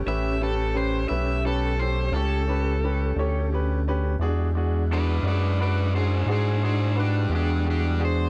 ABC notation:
X:1
M:12/8
L:1/8
Q:3/8=58
K:Edor
V:1 name="Overdriven electric guitar"
e A =c e A c A4 z2 | z2 [Bd] [Bd] [Bd] [^G=c] [Gc] [Gc] [D=G] [DG] [DG] c |]
V:2 name="Grand piano"
[CGB] [CGB] [CGB] [CGB] [CGB] [CGA] [CGc] [CGB] [CGB] [CGc] [CGB] [CGB] | [DF^G] [DFG] [DFG] [DFG] [DFB] [DFG] [DFG] [DFG] [DFB] [DFG] [DFG] [DFG] |]
V:3 name="Tonewheel organ"
[CGA]12 | [^G,D=G] [^G,Df]8- [G,Df]3 |]
V:4 name="Saxophone section"
[A,CG]12 | [^G,DE]12 |]
V:5 name="Analog synth bass" clef=bass
A,,,3 B,,,3 C,,3 D,,3 | E,,3 F,,3 ^G,,3 E,,3 |]